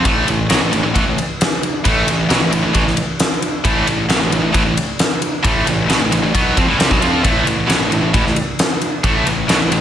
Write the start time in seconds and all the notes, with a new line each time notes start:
0.05 A1 A2 E3 A3, kick, ride
0.27 A1 A2 E3, ride
0.49 B1 B2 F#3, snare, ride
0.61 A1 A2 E3
0.71 A1 A2 E3, ride
0.83 A1 A2 E3
0.94 A1 A2 E3, kick, ride
1.05 A1 A2 E3
1.18 ride
1.41 snare, ride
1.63 ride
1.84 A1 A2 E3 A3, kick, ride
2.06 A1 A2 E3, ride
2.29 B1 B2 F#3, snare, ride
2.40 A1 A2 E3
2.51 A1 A2 E3, ride
2.63 A1 A2 E3
2.73 A1 A2 E3, kick, ride
2.85 A1 A2 E3, snare
2.97 ride
3.20 snare, ride
3.42 ride
3.64 A1 A2 E3 A3, kick, ride
3.86 A1 A2 E3, ride
4.09 B1 B2 F#3, snare, ride
4.20 A1 A2 E3
4.30 A1 A2 E3, ride
4.42 A1 A2 E3
4.53 A1 A2 E3, kick, ride
4.64 A1 A2 E3
4.77 ride
4.99 snare, ride
5.22 ride
5.43 A1 A2 E3 A3, kick, ride
5.66 A1 A2 E3, ride
5.88 B1 B2 F#3, snare, ride
6.00 A1 A2 E3
6.11 A1 A2 E3, ride
6.22 A1 A2 E3
6.34 B1 B2 F#3 B3, kick, ride
6.56 F2 F3 C4, kick, ride
6.67 A1 A2 E3
6.78 C2 C3 G3, snare, ride
6.89 B1 B2 F#3, kick
7.00 F2 F3 C4 F4, ride
7.23 A1 A2 E3 A3, kick, ride
7.45 A1 A2 E3, ride
7.67 B1 B2 F#3, snare, ride
7.79 A1 A2 E3
7.90 A1 A2 E3, ride
8.02 A1 A2 E3
8.13 A1 A2 E3, kick, ride
8.24 A1 A2 E3, snare
8.36 ride
8.59 snare, ride
8.81 ride
9.04 A1 A2 E3 A3, kick, ride
9.25 A1 A2 E3, ride
9.48 B1 B2 F#3, snare, ride
9.60 A1 A2 E3
9.71 A1 A2 E3, ride